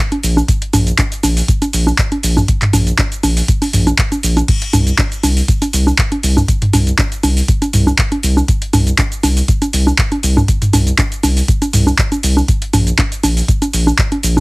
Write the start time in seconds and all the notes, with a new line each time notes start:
0.12 closed hi-hat, high conga
0.23 A#1, open hi-hat, cabasa
0.37 high conga, cabasa
0.48 kick, closed hi-hat, cabasa
0.62 closed hi-hat
0.73 A#1, mid tom, open hi-hat, high conga, cabasa
0.87 closed hi-hat, cabasa
0.98 kick, clap, closed hi-hat, high conga, cabasa
1.12 closed hi-hat, cabasa
1.23 A#1, open hi-hat, high conga, cabasa
1.37 open hi-hat, cabasa
1.48 kick, closed hi-hat, cabasa
1.62 closed hi-hat, high conga, cabasa
1.73 A#1, open hi-hat, cabasa
1.87 high conga, cabasa
1.98 kick, clap, closed hi-hat, cabasa
2.12 closed hi-hat, high conga
2.23 A#1, open hi-hat, cabasa
2.37 mid tom, high conga, cabasa
2.48 kick, closed hi-hat, cabasa
2.62 clap, closed hi-hat, mid tom
2.73 A#1, mid tom, open hi-hat, high conga, cabasa
2.87 closed hi-hat, cabasa
2.98 kick, clap, closed hi-hat, high conga, cabasa
3.12 closed hi-hat, cabasa
3.23 A#1, open hi-hat, high conga, cabasa
3.37 open hi-hat, cabasa
3.48 kick, closed hi-hat, cabasa
3.62 open hi-hat, high conga, cabasa
3.73 A#1, mid tom, open hi-hat, cabasa
3.87 closed hi-hat, high conga, cabasa
3.98 kick, clap, closed hi-hat, cabasa
4.12 closed hi-hat, high conga, cabasa
4.23 A#1, open hi-hat, cabasa
4.37 closed hi-hat, high conga, cabasa
4.48 kick, closed hi-hat, crash, cabasa
4.62 closed hi-hat
4.73 C2, mid tom, open hi-hat, high conga, cabasa
4.87 closed hi-hat, cabasa
4.98 kick, clap, closed hi-hat, high conga, cabasa
5.12 closed hi-hat, cabasa
5.23 C2, open hi-hat, high conga, cabasa
5.37 open hi-hat, cabasa
5.48 kick, closed hi-hat, cabasa
5.62 closed hi-hat, high conga, cabasa
5.73 C2, open hi-hat, cabasa
5.87 high conga, cabasa
5.98 kick, clap, closed hi-hat, cabasa
6.12 closed hi-hat, high conga
6.23 C2, open hi-hat, cabasa
6.37 mid tom, high conga, cabasa
6.48 kick, closed hi-hat, cabasa
6.62 closed hi-hat, mid tom
6.73 C2, mid tom, open hi-hat, high conga, cabasa
6.87 closed hi-hat, cabasa
6.98 kick, clap, closed hi-hat, high conga, cabasa
7.12 closed hi-hat, cabasa
7.23 C2, open hi-hat, high conga, cabasa
7.37 open hi-hat, cabasa
7.48 kick, closed hi-hat, cabasa
7.62 closed hi-hat, high conga, cabasa
7.73 C2, mid tom, open hi-hat, cabasa
7.87 high conga, cabasa
7.98 kick, clap, closed hi-hat, cabasa
8.12 closed hi-hat, high conga
8.23 C2, open hi-hat, cabasa
8.37 high conga, cabasa
8.48 kick, closed hi-hat, cabasa
8.62 closed hi-hat
8.73 C2, mid tom, open hi-hat, high conga, cabasa
8.87 closed hi-hat, cabasa
8.98 kick, clap, closed hi-hat, high conga, cabasa
9.12 closed hi-hat, cabasa
9.23 C2, open hi-hat, high conga, cabasa
9.37 open hi-hat, cabasa
9.48 kick, closed hi-hat, cabasa
9.62 closed hi-hat, high conga, cabasa
9.73 C2, open hi-hat, cabasa
9.87 high conga, cabasa
9.98 kick, clap, closed hi-hat, cabasa
10.12 closed hi-hat, high conga
10.23 C2, open hi-hat, cabasa
10.37 mid tom, high conga, cabasa
10.48 kick, closed hi-hat, cabasa
10.62 closed hi-hat, mid tom, cabasa
10.73 C2, mid tom, open hi-hat, high conga, cabasa
10.87 closed hi-hat, cabasa
10.98 kick, clap, closed hi-hat, high conga, cabasa
11.12 closed hi-hat, cabasa
11.23 C2, open hi-hat, high conga, cabasa
11.37 open hi-hat, cabasa
11.48 kick, closed hi-hat, cabasa
11.62 closed hi-hat, high conga, cabasa
11.73 C2, mid tom, open hi-hat, cabasa
11.87 high conga, cabasa
11.98 kick, clap, closed hi-hat, cabasa
12.12 closed hi-hat, high conga, cabasa
12.23 C2, open hi-hat, cabasa
12.37 high conga, cabasa
12.48 kick, closed hi-hat, cabasa
12.62 closed hi-hat
12.73 A#1, mid tom, open hi-hat, high conga, cabasa
12.87 closed hi-hat, cabasa
12.98 kick, clap, closed hi-hat, high conga, cabasa
13.12 closed hi-hat, cabasa
13.23 A#1, open hi-hat, high conga, cabasa
13.37 open hi-hat, cabasa
13.48 kick, closed hi-hat, cabasa
13.62 closed hi-hat, high conga, cabasa
13.73 A#1, open hi-hat, cabasa
13.87 high conga, cabasa
13.98 kick, clap, closed hi-hat, cabasa
14.12 closed hi-hat, high conga
14.23 A#1, open hi-hat, cabasa
14.37 mid tom, high conga